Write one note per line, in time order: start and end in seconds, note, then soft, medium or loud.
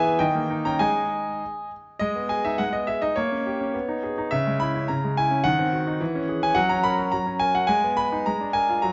0.00 0.18 E3 medium
0.00 0.05 B3 medium
0.00 0.14 G#4 medium
0.00 0.21 B4 medium
0.00 0.21 E5 loud
0.00 0.19 G#5 loud
0.05 0.20 B3 medium
0.19 0.78 D#3 medium
0.19 0.62 D#5 medium
0.19 0.64 G5 loud
0.35 0.59 A#3 medium
0.50 0.74 D#4 medium
0.65 0.80 C#4 medium
0.65 0.80 G5 medium
0.65 0.80 A#5 medium
0.79 1.23 G#3 medium
0.79 1.29 D#4 medium
0.79 1.29 G#4 medium
0.79 1.67 D#5 medium
0.79 1.71 G#5 medium
1.99 2.58 G#3 medium
1.99 2.29 D#5 medium
2.15 2.39 B3 soft
2.29 2.53 G#4 medium
2.29 2.44 G#5 medium
2.45 2.68 D#4 soft
2.45 2.59 E5 medium
2.58 3.15 G#3 medium
2.58 2.73 F#5 medium
2.73 2.96 B3 soft
2.73 2.87 D#5 medium
2.87 3.11 G#4 soft
2.87 3.02 E5 medium
3.02 3.16 D#4 medium
3.02 3.16 D#5 medium
3.16 3.73 A#3 medium
3.16 4.03 C#5 medium
3.32 3.55 C#4 soft
3.46 3.69 G4 soft
3.61 3.75 C#4 soft
3.74 4.30 B3 medium
3.88 4.11 D#4 soft
4.03 4.26 G#4 soft
4.18 4.32 D#4 medium
4.31 4.88 C#3 medium
4.31 4.60 E5 medium
4.47 4.69 G#3 medium
4.60 4.83 E4 medium
4.60 4.88 B5 loud
4.75 4.98 C#4 soft
4.88 5.44 C#3 medium
4.88 5.17 A#5 medium
5.04 5.26 G#3 soft
5.17 5.40 E4 medium
5.17 5.45 G#5 medium
5.31 5.45 C#4 medium
5.44 5.99 D#3 medium
5.44 6.42 F#5 loud
5.59 5.81 C4 medium
5.72 5.95 F#4 medium
5.87 6.01 D#4 medium
6.01 6.55 E3 medium
6.15 6.37 C#4 medium
6.29 6.51 G#4 medium
6.43 6.57 C#4 medium
6.43 6.57 G#5 loud
6.55 7.12 F#3 medium
6.55 6.70 F#5 loud
6.69 6.93 C#4 medium
6.69 6.84 A#5 loud
6.84 7.07 A#4 medium
6.84 7.13 B5 loud
6.99 7.22 F#4 medium
7.12 7.68 F#3 medium
7.12 7.41 A#5 medium
7.26 7.49 C#4 soft
7.39 7.64 A#4 medium
7.39 7.55 G#5 loud
7.55 7.69 F#4 medium
7.55 7.69 F#5 medium
7.67 8.24 G#3 medium
7.67 7.97 G#5 loud
7.84 8.07 B3 medium
7.97 8.21 B4 medium
7.97 8.26 B5 loud
8.12 8.27 D#4 medium
8.26 8.81 G#3 medium
8.26 8.54 A#5 medium
8.41 8.63 D4 soft
8.53 8.77 A#4 medium
8.53 8.82 G#5 loud
8.69 8.83 F4 medium
8.82 8.93 F#3 medium
8.82 8.93 A#5 medium